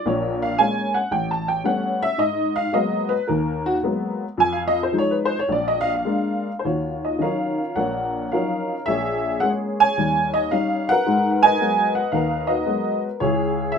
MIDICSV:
0, 0, Header, 1, 2, 480
1, 0, Start_track
1, 0, Key_signature, -6, "minor"
1, 0, Tempo, 540054
1, 49, Time_signature, 4, 2, 24, 8
1, 3889, Tempo, 565504
1, 7249, Tempo, 542986
1, 12067, End_track
2, 0, Start_track
2, 0, Title_t, "Honky-tonk piano"
2, 0, Program_c, 0, 3
2, 50, Note_on_c, 0, 34, 68
2, 51, Note_on_c, 0, 46, 67
2, 62, Note_on_c, 0, 73, 76
2, 376, Note_off_c, 0, 73, 0
2, 377, Note_on_c, 0, 77, 97
2, 467, Note_off_c, 0, 34, 0
2, 468, Note_off_c, 0, 46, 0
2, 520, Note_on_c, 0, 80, 98
2, 521, Note_on_c, 0, 56, 52
2, 522, Note_off_c, 0, 77, 0
2, 525, Note_on_c, 0, 58, 51
2, 529, Note_on_c, 0, 61, 58
2, 839, Note_off_c, 0, 80, 0
2, 839, Note_on_c, 0, 78, 86
2, 864, Note_off_c, 0, 56, 0
2, 866, Note_off_c, 0, 58, 0
2, 868, Note_off_c, 0, 61, 0
2, 988, Note_off_c, 0, 78, 0
2, 990, Note_on_c, 0, 33, 66
2, 994, Note_on_c, 0, 79, 80
2, 1149, Note_off_c, 0, 79, 0
2, 1164, Note_on_c, 0, 81, 85
2, 1314, Note_off_c, 0, 81, 0
2, 1318, Note_on_c, 0, 79, 81
2, 1408, Note_off_c, 0, 33, 0
2, 1457, Note_on_c, 0, 55, 56
2, 1460, Note_on_c, 0, 57, 52
2, 1466, Note_on_c, 0, 59, 53
2, 1470, Note_on_c, 0, 61, 61
2, 1471, Note_off_c, 0, 79, 0
2, 1471, Note_on_c, 0, 78, 83
2, 1792, Note_off_c, 0, 78, 0
2, 1800, Note_on_c, 0, 76, 105
2, 1810, Note_off_c, 0, 55, 0
2, 1812, Note_off_c, 0, 57, 0
2, 1815, Note_off_c, 0, 59, 0
2, 1816, Note_off_c, 0, 61, 0
2, 1936, Note_on_c, 0, 44, 62
2, 1946, Note_on_c, 0, 75, 93
2, 1947, Note_off_c, 0, 76, 0
2, 2272, Note_off_c, 0, 75, 0
2, 2273, Note_on_c, 0, 77, 104
2, 2366, Note_off_c, 0, 44, 0
2, 2423, Note_on_c, 0, 56, 53
2, 2425, Note_on_c, 0, 54, 57
2, 2427, Note_off_c, 0, 77, 0
2, 2429, Note_on_c, 0, 58, 51
2, 2433, Note_on_c, 0, 75, 83
2, 2435, Note_on_c, 0, 59, 56
2, 2746, Note_on_c, 0, 71, 91
2, 2759, Note_off_c, 0, 75, 0
2, 2779, Note_off_c, 0, 56, 0
2, 2780, Note_off_c, 0, 54, 0
2, 2782, Note_off_c, 0, 58, 0
2, 2786, Note_off_c, 0, 59, 0
2, 2905, Note_off_c, 0, 71, 0
2, 2911, Note_on_c, 0, 70, 71
2, 2924, Note_on_c, 0, 39, 75
2, 3239, Note_off_c, 0, 70, 0
2, 3253, Note_on_c, 0, 66, 101
2, 3344, Note_off_c, 0, 39, 0
2, 3344, Note_off_c, 0, 66, 0
2, 3405, Note_on_c, 0, 54, 58
2, 3405, Note_on_c, 0, 56, 49
2, 3407, Note_on_c, 0, 58, 54
2, 3413, Note_on_c, 0, 59, 69
2, 3753, Note_off_c, 0, 54, 0
2, 3753, Note_off_c, 0, 56, 0
2, 3753, Note_off_c, 0, 58, 0
2, 3756, Note_off_c, 0, 59, 0
2, 3889, Note_on_c, 0, 41, 69
2, 3911, Note_on_c, 0, 80, 100
2, 4015, Note_on_c, 0, 77, 76
2, 4056, Note_off_c, 0, 80, 0
2, 4144, Note_on_c, 0, 75, 93
2, 4188, Note_off_c, 0, 77, 0
2, 4248, Note_off_c, 0, 75, 0
2, 4276, Note_on_c, 0, 72, 79
2, 4297, Note_off_c, 0, 41, 0
2, 4351, Note_off_c, 0, 72, 0
2, 4351, Note_on_c, 0, 53, 58
2, 4353, Note_on_c, 0, 56, 49
2, 4361, Note_on_c, 0, 63, 58
2, 4405, Note_on_c, 0, 73, 94
2, 4512, Note_on_c, 0, 71, 74
2, 4540, Note_off_c, 0, 73, 0
2, 4635, Note_on_c, 0, 72, 95
2, 4675, Note_off_c, 0, 71, 0
2, 4696, Note_off_c, 0, 53, 0
2, 4697, Note_off_c, 0, 56, 0
2, 4701, Note_off_c, 0, 63, 0
2, 4732, Note_off_c, 0, 72, 0
2, 4752, Note_on_c, 0, 73, 89
2, 4829, Note_off_c, 0, 73, 0
2, 4831, Note_on_c, 0, 34, 65
2, 4861, Note_on_c, 0, 74, 82
2, 4994, Note_on_c, 0, 75, 87
2, 5010, Note_off_c, 0, 74, 0
2, 5104, Note_on_c, 0, 77, 108
2, 5161, Note_off_c, 0, 75, 0
2, 5208, Note_off_c, 0, 77, 0
2, 5220, Note_on_c, 0, 77, 75
2, 5260, Note_off_c, 0, 34, 0
2, 5310, Note_on_c, 0, 56, 62
2, 5317, Note_on_c, 0, 58, 52
2, 5321, Note_on_c, 0, 62, 61
2, 5671, Note_off_c, 0, 56, 0
2, 5674, Note_off_c, 0, 58, 0
2, 5676, Note_off_c, 0, 62, 0
2, 5691, Note_off_c, 0, 77, 0
2, 5771, Note_on_c, 0, 72, 65
2, 5811, Note_off_c, 0, 72, 0
2, 5816, Note_on_c, 0, 39, 53
2, 5822, Note_on_c, 0, 73, 66
2, 5823, Note_on_c, 0, 65, 52
2, 5825, Note_on_c, 0, 66, 47
2, 6155, Note_on_c, 0, 75, 65
2, 6157, Note_off_c, 0, 73, 0
2, 6232, Note_off_c, 0, 39, 0
2, 6273, Note_on_c, 0, 54, 40
2, 6274, Note_on_c, 0, 51, 49
2, 6277, Note_on_c, 0, 61, 44
2, 6277, Note_on_c, 0, 63, 45
2, 6300, Note_on_c, 0, 77, 77
2, 6303, Note_off_c, 0, 75, 0
2, 6311, Note_on_c, 0, 70, 55
2, 6313, Note_on_c, 0, 73, 60
2, 6626, Note_off_c, 0, 54, 0
2, 6627, Note_off_c, 0, 51, 0
2, 6628, Note_off_c, 0, 61, 0
2, 6628, Note_off_c, 0, 63, 0
2, 6742, Note_off_c, 0, 65, 0
2, 6742, Note_off_c, 0, 77, 0
2, 6743, Note_off_c, 0, 66, 0
2, 6757, Note_off_c, 0, 70, 0
2, 6758, Note_off_c, 0, 73, 0
2, 6758, Note_on_c, 0, 78, 76
2, 6764, Note_on_c, 0, 34, 55
2, 6769, Note_on_c, 0, 70, 55
2, 6771, Note_on_c, 0, 73, 62
2, 7184, Note_off_c, 0, 34, 0
2, 7230, Note_off_c, 0, 73, 0
2, 7234, Note_off_c, 0, 70, 0
2, 7234, Note_on_c, 0, 77, 77
2, 7243, Note_on_c, 0, 73, 55
2, 7244, Note_on_c, 0, 53, 46
2, 7246, Note_on_c, 0, 70, 58
2, 7247, Note_on_c, 0, 54, 47
2, 7252, Note_on_c, 0, 63, 51
2, 7254, Note_on_c, 0, 61, 45
2, 7257, Note_off_c, 0, 78, 0
2, 7598, Note_off_c, 0, 53, 0
2, 7599, Note_off_c, 0, 54, 0
2, 7602, Note_off_c, 0, 63, 0
2, 7603, Note_off_c, 0, 61, 0
2, 7624, Note_off_c, 0, 77, 0
2, 7699, Note_off_c, 0, 73, 0
2, 7701, Note_off_c, 0, 70, 0
2, 7711, Note_on_c, 0, 76, 99
2, 7727, Note_on_c, 0, 34, 59
2, 7732, Note_on_c, 0, 73, 62
2, 7734, Note_on_c, 0, 68, 66
2, 8152, Note_off_c, 0, 34, 0
2, 8171, Note_off_c, 0, 76, 0
2, 8193, Note_on_c, 0, 78, 93
2, 8212, Note_on_c, 0, 56, 51
2, 8213, Note_on_c, 0, 58, 41
2, 8222, Note_on_c, 0, 61, 52
2, 8270, Note_off_c, 0, 78, 0
2, 8542, Note_off_c, 0, 73, 0
2, 8547, Note_on_c, 0, 80, 110
2, 8556, Note_on_c, 0, 73, 69
2, 8561, Note_off_c, 0, 56, 0
2, 8561, Note_off_c, 0, 58, 0
2, 8566, Note_off_c, 0, 61, 0
2, 8663, Note_off_c, 0, 68, 0
2, 8700, Note_on_c, 0, 39, 60
2, 8702, Note_on_c, 0, 55, 62
2, 9019, Note_on_c, 0, 75, 89
2, 9041, Note_off_c, 0, 80, 0
2, 9116, Note_off_c, 0, 39, 0
2, 9117, Note_off_c, 0, 55, 0
2, 9175, Note_on_c, 0, 77, 94
2, 9176, Note_off_c, 0, 75, 0
2, 9181, Note_on_c, 0, 55, 56
2, 9182, Note_on_c, 0, 61, 47
2, 9185, Note_on_c, 0, 63, 57
2, 9471, Note_off_c, 0, 73, 0
2, 9508, Note_on_c, 0, 78, 111
2, 9512, Note_off_c, 0, 77, 0
2, 9521, Note_off_c, 0, 55, 0
2, 9521, Note_off_c, 0, 61, 0
2, 9523, Note_off_c, 0, 63, 0
2, 9523, Note_on_c, 0, 71, 69
2, 9532, Note_on_c, 0, 70, 73
2, 9659, Note_on_c, 0, 56, 66
2, 9662, Note_on_c, 0, 44, 59
2, 9867, Note_off_c, 0, 78, 0
2, 9880, Note_on_c, 0, 78, 64
2, 9973, Note_off_c, 0, 78, 0
2, 9982, Note_on_c, 0, 80, 115
2, 9984, Note_off_c, 0, 71, 0
2, 9997, Note_on_c, 0, 71, 67
2, 9999, Note_on_c, 0, 75, 75
2, 10073, Note_off_c, 0, 56, 0
2, 10075, Note_off_c, 0, 44, 0
2, 10138, Note_on_c, 0, 56, 52
2, 10140, Note_on_c, 0, 54, 44
2, 10142, Note_on_c, 0, 59, 45
2, 10143, Note_on_c, 0, 66, 61
2, 10423, Note_off_c, 0, 80, 0
2, 10436, Note_off_c, 0, 70, 0
2, 10446, Note_on_c, 0, 78, 82
2, 10475, Note_off_c, 0, 56, 0
2, 10476, Note_off_c, 0, 54, 0
2, 10477, Note_off_c, 0, 59, 0
2, 10477, Note_off_c, 0, 66, 0
2, 10594, Note_on_c, 0, 77, 84
2, 10598, Note_on_c, 0, 39, 67
2, 10603, Note_off_c, 0, 78, 0
2, 10604, Note_off_c, 0, 71, 0
2, 10614, Note_on_c, 0, 70, 57
2, 10617, Note_on_c, 0, 71, 58
2, 10893, Note_off_c, 0, 75, 0
2, 10906, Note_on_c, 0, 75, 80
2, 10908, Note_off_c, 0, 71, 0
2, 10921, Note_on_c, 0, 71, 54
2, 10924, Note_on_c, 0, 66, 54
2, 10934, Note_off_c, 0, 77, 0
2, 11014, Note_off_c, 0, 39, 0
2, 11066, Note_off_c, 0, 66, 0
2, 11072, Note_on_c, 0, 54, 45
2, 11072, Note_on_c, 0, 56, 52
2, 11074, Note_on_c, 0, 59, 47
2, 11080, Note_on_c, 0, 66, 54
2, 11364, Note_off_c, 0, 75, 0
2, 11422, Note_off_c, 0, 54, 0
2, 11422, Note_off_c, 0, 56, 0
2, 11423, Note_off_c, 0, 59, 0
2, 11426, Note_off_c, 0, 66, 0
2, 11523, Note_off_c, 0, 71, 0
2, 11532, Note_off_c, 0, 70, 0
2, 11553, Note_on_c, 0, 73, 83
2, 11558, Note_on_c, 0, 37, 62
2, 11568, Note_on_c, 0, 68, 68
2, 11573, Note_on_c, 0, 64, 63
2, 11983, Note_off_c, 0, 37, 0
2, 12009, Note_on_c, 0, 76, 93
2, 12058, Note_off_c, 0, 73, 0
2, 12067, Note_off_c, 0, 64, 0
2, 12067, Note_off_c, 0, 68, 0
2, 12067, Note_off_c, 0, 76, 0
2, 12067, End_track
0, 0, End_of_file